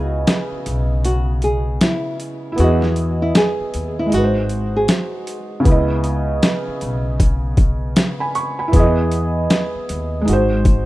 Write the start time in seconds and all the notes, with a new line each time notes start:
Already playing: C#2 C#3 B3 E4 G#4 D#5
0.27 snare, closed hi-hat
0.52 muted upright bass stroke
0.66 B1, closed hi-hat
1.05 F#4, closed hi-hat
1.42 G#4, closed hi-hat
1.81 E4, snare, closed hi-hat
2.20 closed hi-hat
2.52 B3 E4
2.58 E2 F#4 G#4, closed hi-hat
2.64 D#5
2.82 snare
2.96 closed hi-hat
3.22 E4
3.35 G#4, snare, closed hi-hat
3.60 muted upright bass stroke
3.74 D#2, closed hi-hat
3.99 E4
4.06 G#3 D#4
4.12 G#1 F#4, closed hi-hat
4.17 B4
4.24 C5
4.49 closed hi-hat
4.76 G#4
4.88 snare, closed hi-hat
5.27 closed hi-hat
5.60 C#3 B3
5.65 C#2 E4, kick, closed hi-hat
5.71 D#5
6.04 closed hi-hat
6.43 snare, closed hi-hat
6.68 muted upright bass stroke
6.81 B1, closed hi-hat
7.20 kick, closed hi-hat
7.57 kick, closed hi-hat
7.96 snare, closed hi-hat
8.20 G#5 B5
8.35 C#6, closed hi-hat
8.59 G#5 B5
8.68 B3 E4
8.73 E2 G#4, kick, closed hi-hat
8.79 D#5
9.12 closed hi-hat
9.50 snare, closed hi-hat
9.75 muted upright bass stroke
9.89 D#2, closed hi-hat
10.22 G#3 D#4
10.28 G#1 F#4, closed hi-hat
10.33 C5
10.65 kick, closed hi-hat